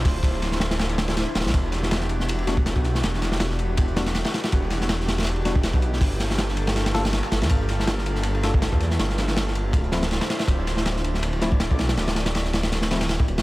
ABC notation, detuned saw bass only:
X:1
M:4/4
L:1/16
Q:"Swing 16ths" 1/4=161
K:Ephr
V:1 name="Detuned saw bass" clef=bass
D,,,12- D,,, z D,,, B,,, | E,,,12- E,,, B,,,3 | E,,,12- E,,, z3 | E,,,12- E,,, B,,,3 |
G,,,12- G,,, z G,,, E,, | G,,,12- G,,, E,,3 | G,,,8 D,,,4- D,,, z3 | D,,,12- D,,, B,,,3 |
D,,,12- D,,, z D,,, B,,, |]